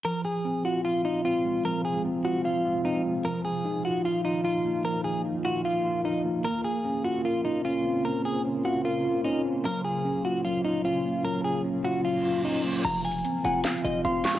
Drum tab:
CC |------------------------------------------------|------------------------------------------------|------------------------------------------------|------------------------------------------------|
HH |------------------------------------------------|------------------------------------------------|------------------------------------------------|------------------------------------------------|
CP |------------------------------------------------|------------------------------------------------|------------------------------------------------|------------------------------------------------|
SD |------------------------------------------------|------------------------------------------------|------------------------------------------------|------------------------------------------------|

CC |------------------------------------------------|------------------------------------------------|------------------------------------------------|------------------------------------------------|
HH |------------------------------------------------|------------------------------------------------|------------------------------------------------|------------------------------------------------|
CP |------------------------------------------------|------------------------------------------------|------------------------------------------------|------------------------------------------------|
SD |------------------------------------------------|------------------------------------------------|------------------------------------------------|------------------------------------------------|

CC |x-----------------------------------------------|
HH |x-----x-x-x-x-----x-----x-x-x-x-----x-----------|
CP |------------------------x-----------------x-----|
SD |------------------------o-----------------o--o--|